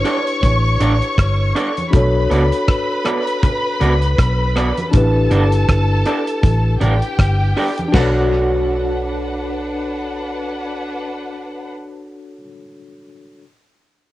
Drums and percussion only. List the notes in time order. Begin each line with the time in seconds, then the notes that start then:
0.05 closed hi-hat
0.27 closed hi-hat
0.42 kick, closed hi-hat, low conga
0.80 closed hi-hat
1.02 closed hi-hat
1.18 kick, cross-stick, closed hi-hat
1.56 closed hi-hat
1.77 closed hi-hat, high conga
1.93 kick, closed hi-hat, low conga
2.30 closed hi-hat, low conga
2.52 closed hi-hat
2.68 kick, cross-stick, closed hi-hat
3.05 cross-stick, closed hi-hat
3.27 closed hi-hat
3.43 kick, closed hi-hat, low conga
3.81 closed hi-hat
4.02 closed hi-hat
4.19 kick, cross-stick, closed hi-hat
4.57 cross-stick, closed hi-hat
4.78 closed hi-hat, high conga
4.93 kick, closed hi-hat, low conga
5.31 closed hi-hat, low conga
5.52 closed hi-hat
5.69 kick, cross-stick, closed hi-hat
6.06 closed hi-hat
6.28 closed hi-hat
6.44 kick, closed hi-hat, low conga
6.81 closed hi-hat, low conga
7.02 closed hi-hat
7.19 kick, cross-stick, closed hi-hat
7.57 open hi-hat
7.78 closed hi-hat, high conga
7.93 kick, snare, splash, low conga